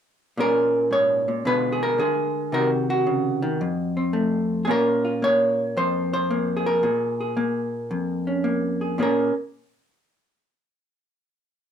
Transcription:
0.37 A#2 A#3 C#4 G#4 A#4
0.91 G#2 C#5
1.28 A#2
1.45 B2 D3 G#3 F4 B4
1.72 G#4
1.83 A#4
1.98 D3 G#4
2.52 C3 D#3 D#4 F#4 A#4
2.90 F#4
3.07 C#3
3.42 D#3
3.61 F2
3.97 C4
4.13 A3
4.65 A#2 A#3 G#4
4.69 C#4 F4 A#4
5.05 F4
5.22 A#3 C#5
5.77 F2 C5
6.13 C5
6.30 A#3
6.57 G#4
6.66 A#4
6.83 A#2 G#4
7.20 G#4
7.37 A#3
7.91 F2
8.27 C#4
8.44 A#3
8.81 G#4
8.98 A#2 A#3 C#4 G#4
9.02 A#4

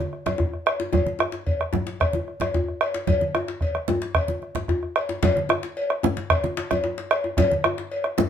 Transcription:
0.13 bombo rim
0.26 bombo rim, cowbell, djembe slap, high conga, djembe bass, low conga
0.38 bombo rim, bombo low, djembe tone
0.53 bombo rim
0.66 bombo rim, cowbell
0.80 djembe slap, djembe tone
0.93 bombo low, cowbell, high conga, djembe bass, low conga
1.06 high conga
1.19 bombo rim, djembe tone
1.32 bombo rim, djembe slap
1.46 bombo low, cowbell
1.61 bombo rim
1.73 djembe slap, djembe tone, djembe bass, low conga
1.87 djembe slap
2.00 bombo rim, bombo low, cowbell, djembe slap
2.13 high conga, djembe tone
2.28 bombo rim
2.40 bombo rim, cowbell, djembe slap, high conga, low conga, djembe bass
2.54 bombo rim, bombo low, djembe tone
2.68 bombo rim
2.81 bombo rim, cowbell
2.94 djembe slap
3.07 bombo rim, bombo low, cowbell, djembe slap, djembe bass, low conga
3.21 high conga
3.35 bombo rim, high conga, djembe tone
3.48 bombo rim, djembe slap
3.61 bombo rim, bombo low, cowbell
3.75 bombo rim, high conga
3.88 djembe tone, low conga, djembe bass
4.02 bombo rim, djembe slap
4.15 bombo rim, bombo low, cowbell
4.28 high conga, djembe tone
4.42 bombo rim, high conga
4.55 bombo rim, djembe slap, low conga, djembe bass
4.68 bombo rim, bombo low, high conga, djembe tone
4.83 bombo rim
4.96 bombo rim, cowbell
5.09 djembe slap, djembe tone
5.23 bombo rim, bombo low, cowbell, djembe slap, djembe bass, low conga
5.37 high conga
5.49 bombo rim, djembe tone
5.63 djembe slap
5.77 cowbell
5.90 bombo rim, djembe slap
6.03 djembe tone, high conga, djembe bass, low conga
6.17 djembe slap, high conga
6.30 bombo rim, bombo low, cowbell, high conga
6.44 bombo rim, djembe tone, high conga
6.57 djembe slap, high conga
6.71 bombo rim, cowbell, high conga, djembe bass, low conga
6.84 djembe tone
6.98 djembe slap
7.11 bombo rim, cowbell
7.24 djembe tone
7.37 bombo rim, bombo low, cowbell, djembe slap, djembe bass, low conga
7.51 high conga
7.64 bombo rim, djembe tone
7.78 djembe slap
7.91 cowbell
8.04 bombo rim, djembe slap
8.18 djembe tone, high conga, djembe bass, low conga

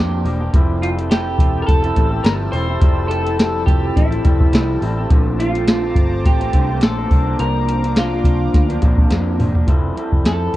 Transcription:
Already playing: F2 C3 F3 A#3 D4 G4 C5 G5 D6
0.00 G4
0.24 E1 F3 A#3 D4 G4, open hi-hat
0.40 A#3 D4 G4
0.53 F1 F3 G3 C4 E4 G4 A4 A5 E6, kick, closed hi-hat
0.82 F4, closed hi-hat
0.97 C4 E4 A4, closed hi-hat
1.10 F3 G3 C4 E4 G4 A4, snare, closed hi-hat
1.26 C4 E4 A4
1.39 E1, kick, closed hi-hat
1.62 A#4
1.67 F1 A4, kick, closed hi-hat
1.83 C4 E4 A4, closed hi-hat
1.95 A1 G3 C4 E4 A4, kick, closed hi-hat
2.10 C4 E4 A4
2.24 G1 F3 G3 C4 E4 A4 A#4, snare, closed hi-hat
2.52 E1 G3 C4 E4 A4 C5, open hi-hat
2.67 C4 E4 A4
2.80 F1 F3 G3 C4 E4 A4, kick, closed hi-hat
3.08 A4, closed hi-hat
3.24 C4 E4 A4, closed hi-hat
3.38 F3 G3 C4 E4 A4, snare, closed hi-hat
3.66 F1 G4, kick, closed hi-hat
3.96 A1 E4, kick, closed hi-hat
4.11 C4 E4 A4, closed hi-hat
4.24 F1 G3 C4 E4 A4, kick, closed hi-hat
4.40 kick
4.52 C2 F3 G3 C4 E4 A4, snare, closed hi-hat
4.81 A1 G3 C4 E4 A4, open hi-hat
4.97 C4 E4 A4
5.10 A#1 A#2 D3 A3 C4 F4 C5 A5 A#5 D6, kick, closed hi-hat
5.40 F4, closed hi-hat
5.54 A3 C4 F4, closed hi-hat
5.67 A#2 D3 A3 C4 F4, snare, closed hi-hat
5.83 A3 C4 F4
5.95 G1, kick, closed hi-hat
6.25 A1 G4, kick, closed hi-hat
6.40 A3 C4 F4, closed hi-hat
6.53 C2 D3 A3 C4 F4, kick, closed hi-hat
6.69 A3 C4 F4
6.81 A#1 A#2 D3 A3 C4 F4 A4, snare, closed hi-hat
7.09 C2 C3 F3 A#3 D4 F5 A#5 D6, kick, open hi-hat
7.25 F3 A#3 D4
7.38 C2 C3 F3 A#3 D4 A#4, closed hi-hat
7.68 closed hi-hat
7.83 F3 A#3 D4, closed hi-hat
7.96 C3 F3 A#3 D4 F4, snare, closed hi-hat
8.12 F3 A#3 D4
8.24 C2, kick, closed hi-hat
8.54 D2, kick, snare, closed hi-hat
8.68 F3 A#3 D4, closed hi-hat
8.81 A#1 C3 F3 A#3 D4, kick, closed hi-hat
8.98 kick
9.10 F2 C3 F3 A#3 D4, snare, closed hi-hat
9.38 E1 C3 F3 A#3 D4, mid tom, open hi-hat
9.54 F3 A#3 D4, floor tom
9.67 F1 F3 G3 C4 E4 A4, kick, closed hi-hat
9.95 G3 C4 E4 A4, closed hi-hat
10.12 F1, kick
10.24 F2 F3 G3 C4 E4 A4, snare, closed hi-hat
10.53 G3

